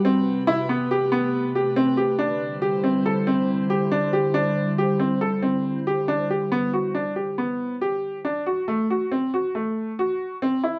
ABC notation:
X:1
M:5/4
L:1/8
Q:1/4=139
K:Bphr
V:1 name="Grand piano"
C2 E B, G B,2 G C G | D2 G C A C2 G D G | D2 G C A C2 G D G | B, F D G B,2 G2 D F |
A, F C F A,2 F2 C E |]
V:2 name="Ambient pad"
[C,A,GB]8- [C,A,GB]2 | [D,G,Ec]8- [D,G,Ec]2- | [D,G,Ec]8- [D,G,Ec]2 | z8 z2 |
z8 z2 |]